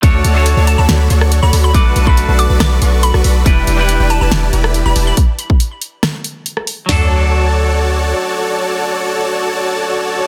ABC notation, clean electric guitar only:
X:1
M:4/4
L:1/16
Q:1/4=140
K:D
V:1 name="Clean electric guitar"
[A,DFc]3 [A,DFc]12- [A,DFc] | [A,DFB]3 [A,DFB]12- [A,DFB] | [G,DEB]3 [G,DEB]12- [G,DEB] | z16 |
[F,DA]16- | [F,DA]16 |]